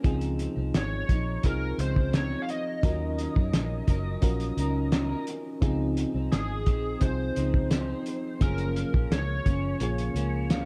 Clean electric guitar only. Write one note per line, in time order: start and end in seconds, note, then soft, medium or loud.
0.03 0.56 C#3 medium
0.03 0.57 F3 medium
0.03 0.57 C4 medium
0.03 0.55 D#4 medium
0.56 1.08 F3 soft
0.56 1.09 D#4 soft
1.09 1.78 F3 medium
1.09 1.81 D#4 medium
1.78 2.12 C#3 medium
1.78 2.12 F3 medium
1.78 2.14 C4 medium
1.78 2.14 D#4 medium
2.13 2.31 C#3 medium
2.13 2.31 F3 medium
2.13 2.31 C4 medium
2.13 2.30 D#4 medium
2.31 2.83 F3 soft
2.31 2.84 C4 soft
2.31 2.83 D#4 medium
2.83 3.35 D#3 medium
2.83 3.36 F#3 medium
2.83 3.36 C#4 medium
2.83 3.36 D#4 medium
2.83 3.34 A#4 medium
3.35 3.87 C#4 soft
3.35 3.88 D#4 soft
3.35 3.88 A#4 medium
3.87 4.56 F#3 medium
3.87 4.58 C#4 medium
3.87 4.59 D#4 medium
3.87 4.59 A#4 medium
4.57 4.91 F#3 medium
4.57 4.92 C#4 medium
4.57 4.93 D#4 medium
4.57 4.93 A#4 medium
4.92 5.10 F#3 medium
4.92 5.10 C#4 medium
4.92 5.10 D#4 medium
4.92 5.08 A#4 medium
5.09 5.63 C#4 soft
5.09 5.63 D#4 soft
5.09 5.62 A#4 medium
5.62 6.15 C#3 medium
5.62 6.15 F3 medium
5.62 6.15 C4 medium
5.62 6.13 D#4 medium
6.14 6.66 F3 soft
6.14 6.67 C4 soft
6.14 6.67 D#4 medium
6.67 7.36 F3 medium
6.67 7.36 C4 medium
6.67 7.37 D#4 medium
7.35 7.69 C#3 medium
7.35 7.71 F3 medium
7.35 7.72 C4 medium
7.35 7.72 D#4 medium
7.71 7.89 C#3 medium
7.71 7.89 F3 medium
7.71 7.88 C4 medium
7.71 7.87 D#4 medium
7.88 8.41 F3 soft
7.88 8.41 C4 soft
7.88 8.41 D#4 medium
8.41 8.93 F#2 medium
8.41 8.94 C#3 medium
8.41 8.94 F3 medium
8.41 8.93 A#3 medium
8.41 8.92 C#4 medium
8.93 9.45 F3 soft
8.93 9.46 A#3 soft
8.93 9.45 C#4 soft
9.45 10.13 C#3 medium
9.45 10.15 F3 medium
9.45 10.15 A#3 medium
9.45 10.17 C#4 medium
10.14 10.48 C#3 medium
10.14 10.49 F3 medium
10.14 10.50 A#3 medium
10.14 10.51 C#4 medium
10.50 10.65 C#3 medium
10.50 10.65 F3 medium
10.50 10.65 A#3 medium
10.50 10.65 C#4 medium